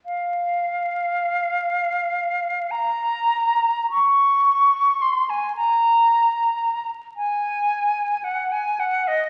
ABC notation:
X:1
M:4/4
L:1/16
Q:1/4=54
K:Bbm
V:1 name="Flute"
f8 b4 d'4 | c' a b4- b z a4 g a g e |]